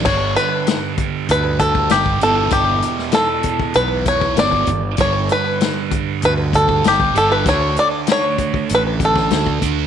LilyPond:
<<
  \new Staff \with { instrumentName = "Five-string banjo" } { \time 4/4 \key g \lydian \tempo 4 = 97 cis''8 b'4. b'8 a'8 g'8 a'8 | g'4 a'4 b'8 cis''8 d''8. r16 | cis''8 b'4. b'8 a'8 g'8 a'16 b'16 | cis''8 d''8 cis''4 b'8 a'4 r8 | }
  \new Staff \with { instrumentName = "Distorted electric guitar" } { \clef bass \time 4/4 \key g \lydian <g, d g>2.~ <g, d g>8 <e, b, e>8~ | <e, b, e>2. <e, b, e>8 r8 | <g, d g>2.~ <g, d g>8 <g, d g>8 | <d a d'>2.~ <d a d'>8 <d a d'>8 | }
  \new Staff \with { instrumentName = "Fingered electric bass" } { \clef bass \time 4/4 \key g \lydian g,,8 r4. d,4 g,,8 g,,8 | g,,8 r4. b,,4 g,,8 g,,8 | g,,8 r4. d,4 g,,8 g,,8 | d,8 r4. a,,4 d,8 d,8 | }
  \new DrumStaff \with { instrumentName = "Drums" } \drummode { \time 4/4 <cymc bd>8 hh8 <hh sn>8 <hh bd>8 hh8 <hh bd>16 bd16 <hh sn>16 bd16 hh8 | <hh bd>8 hh16 sn16 <hh sn>8 <hh bd>16 bd16 hh8 <hh bd>16 bd16 <hh sn>16 bd16 <hh bd>8 | <hh bd>8 hh8 <hh sn>8 <hh bd>8 hh8 <hh bd>16 bd16 <hh sn>16 bd16 hh8 | <hh bd>8 hh8 <hh sn>8 <hh bd>16 bd16 hh8 <hh bd>16 <bd sn>16 <hh sn>16 bd16 <hh bd>8 | }
>>